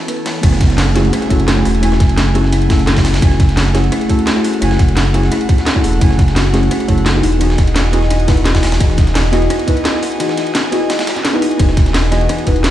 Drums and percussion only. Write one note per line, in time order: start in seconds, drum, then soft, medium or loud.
0.08 closed hi-hat medium
0.08 ride medium
0.26 snare loud
0.26 closed hi-hat medium
0.26 open hi-hat medium
0.43 kick loud
0.43 closed hi-hat loud
0.43 crash loud
0.43 ride medium
0.52 cross-stick soft
0.52 snare soft
0.61 kick loud
0.61 snare medium
0.61 closed hi-hat medium
0.61 ride medium
0.70 snare soft
0.70 closed hi-hat soft
0.78 snare loud
0.78 closed hi-hat medium
0.78 open hi-hat medium
0.96 cross-stick soft
0.96 snare medium
0.96 closed hi-hat medium
0.96 ride medium
1.05 ride soft
1.13 cross-stick medium
1.13 closed hi-hat loud
1.13 ride medium
1.22 closed hi-hat soft
1.30 kick medium
1.30 closed hi-hat medium
1.30 ride medium
1.40 closed hi-hat soft
1.48 snare loud
1.48 closed hi-hat loud
1.48 ride medium
1.65 cross-stick soft
1.65 open hi-hat medium
1.65 ride medium
1.75 closed hi-hat soft
1.83 closed hi-hat loud
1.83 ride medium
1.92 cross-stick soft
1.92 snare medium
2.00 kick loud
2.00 snare medium
2.00 closed hi-hat medium
2.00 ride medium
2.09 closed hi-hat soft
2.09 ride soft
2.18 snare loud
2.18 closed hi-hat medium
2.18 ride medium
2.35 cross-stick soft
2.35 closed hi-hat medium
2.35 ride medium
2.44 snare soft
2.52 closed hi-hat medium
2.52 ride medium
2.62 closed hi-hat soft
2.62 ride soft
2.70 kick loud
2.70 snare loud
2.70 closed hi-hat medium
2.70 open hi-hat medium
2.79 closed hi-hat soft
2.87 snare loud
2.87 snare medium
2.87 closed hi-hat loud
2.87 ride medium
2.97 kick medium
2.97 snare loud
2.97 open hi-hat medium
3.05 snare loud
3.05 open hi-hat medium
3.14 snare loud
3.14 closed hi-hat soft
3.14 open hi-hat medium
3.22 kick loud
3.22 closed hi-hat medium
3.22 ride medium
3.31 cross-stick soft
3.31 snare soft
3.40 kick loud
3.40 snare medium
3.40 closed hi-hat medium
3.40 ride medium
3.49 snare soft
3.49 closed hi-hat soft
3.57 snare loud
3.57 closed hi-hat medium
3.57 open hi-hat medium
3.75 cross-stick soft
3.75 snare medium
3.75 closed hi-hat medium
3.75 ride medium
3.84 ride soft
3.92 cross-stick medium
3.92 closed hi-hat medium
3.92 ride medium
4.01 closed hi-hat soft
4.09 kick medium
4.09 closed hi-hat medium
4.09 ride medium
4.19 closed hi-hat soft
4.27 snare loud
4.27 closed hi-hat medium
4.27 ride medium
4.44 cross-stick soft
4.44 open hi-hat medium
4.44 ride medium
4.54 closed hi-hat soft
4.62 closed hi-hat medium
4.62 ride medium
4.71 cross-stick soft
4.71 snare medium
4.79 kick loud
4.79 snare medium
4.79 closed hi-hat medium
4.79 ride medium
4.88 closed hi-hat soft
4.88 ride soft
4.97 snare loud
4.97 closed hi-hat medium
4.97 ride medium
5.14 cross-stick soft
5.14 closed hi-hat medium
5.14 ride medium
5.23 snare soft
5.32 closed hi-hat medium
5.32 ride medium
5.41 closed hi-hat soft
5.41 ride soft
5.49 kick loud
5.49 closed hi-hat medium
5.49 ride medium
5.58 snare soft
5.58 closed hi-hat soft
5.67 snare loud
5.67 closed hi-hat medium
5.67 ride medium
5.76 kick medium
5.84 open hi-hat medium
5.84 ride medium
5.93 closed hi-hat soft
6.01 kick loud
6.01 closed hi-hat medium
6.01 ride medium
6.11 cross-stick soft
6.11 snare soft
6.19 kick loud
6.19 snare medium
6.19 closed hi-hat medium
6.19 ride medium
6.28 snare soft
6.28 closed hi-hat soft
6.36 snare loud
6.36 closed hi-hat medium
6.36 open hi-hat medium
6.54 cross-stick soft
6.54 snare medium
6.54 closed hi-hat medium
6.54 ride medium
6.63 ride soft
6.71 cross-stick medium
6.71 closed hi-hat medium
6.71 ride medium
6.80 closed hi-hat soft
6.88 kick medium
6.88 closed hi-hat medium
6.88 ride medium
6.98 closed hi-hat soft
7.06 snare loud
7.06 closed hi-hat medium
7.06 ride medium
7.23 cross-stick soft
7.23 open hi-hat medium
7.23 ride medium
7.32 closed hi-hat soft
7.41 closed hi-hat medium
7.41 ride medium
7.50 cross-stick soft
7.50 snare medium
7.58 kick loud
7.58 snare medium
7.58 closed hi-hat medium
7.58 ride medium
7.67 closed hi-hat soft
7.67 ride soft
7.76 snare loud
7.76 closed hi-hat medium
7.76 ride medium
7.93 cross-stick soft
7.93 closed hi-hat medium
7.93 ride medium
8.02 snare soft
8.10 closed hi-hat medium
8.10 ride medium
8.20 closed hi-hat soft
8.20 ride soft
8.28 kick loud
8.28 snare loud
8.28 closed hi-hat medium
8.28 open hi-hat medium
8.37 closed hi-hat soft
8.46 snare loud
8.46 snare medium
8.46 closed hi-hat medium
8.46 ride medium
8.55 kick medium
8.55 snare loud
8.55 open hi-hat medium
8.63 snare loud
8.63 open hi-hat medium
8.72 snare loud
8.72 closed hi-hat soft
8.72 open hi-hat medium
8.80 kick loud
8.80 closed hi-hat medium
8.80 ride medium
8.90 cross-stick soft
8.90 snare soft
8.98 kick loud
8.98 snare medium
8.98 closed hi-hat medium
8.98 ride medium
9.07 snare soft
9.07 closed hi-hat soft
9.15 snare loud
9.15 closed hi-hat loud
9.15 open hi-hat medium
9.33 cross-stick soft
9.33 snare medium
9.33 closed hi-hat medium
9.33 ride medium
9.42 ride soft
9.50 cross-stick medium
9.50 closed hi-hat loud
9.50 ride medium
9.59 closed hi-hat soft
9.68 kick medium
9.68 closed hi-hat medium
9.68 ride medium
9.77 closed hi-hat soft
9.85 snare loud
9.85 closed hi-hat loud
9.85 ride medium
10.03 cross-stick soft
10.03 open hi-hat medium
10.03 ride medium
10.12 closed hi-hat soft
10.20 closed hi-hat loud
10.20 ride medium
10.29 cross-stick soft
10.29 snare medium
10.37 snare medium
10.37 closed hi-hat medium
10.37 ride medium
10.47 closed hi-hat soft
10.47 ride soft
10.55 snare loud
10.55 closed hi-hat loud
10.55 ride medium
10.72 cross-stick soft
10.72 closed hi-hat medium
10.72 ride medium
10.90 snare loud
10.90 closed hi-hat loud
10.90 open hi-hat medium
10.99 snare loud
10.99 closed hi-hat soft
10.99 open hi-hat medium
11.07 snare loud
11.07 closed hi-hat medium
11.07 open hi-hat medium
11.16 snare soft
11.16 closed hi-hat soft
11.25 snare loud
11.25 closed hi-hat loud
11.25 ride medium
11.42 open hi-hat medium
11.42 ride medium
11.51 closed hi-hat soft
11.59 kick loud
11.59 closed hi-hat loud
11.59 ride medium
11.69 cross-stick soft
11.69 snare soft
11.77 kick loud
11.77 snare medium
11.77 closed hi-hat medium
11.77 ride medium
11.86 snare soft
11.86 closed hi-hat soft
11.94 snare loud
11.94 closed hi-hat loud
11.94 open hi-hat medium
12.12 cross-stick soft
12.12 snare medium
12.12 closed hi-hat medium
12.12 ride medium
12.21 ride soft
12.29 cross-stick medium
12.29 closed hi-hat medium
12.29 ride medium
12.38 closed hi-hat soft
12.47 kick medium
12.47 closed hi-hat medium
12.47 ride medium
12.56 closed hi-hat soft
12.64 snare loud
12.64 closed hi-hat loud
12.64 ride medium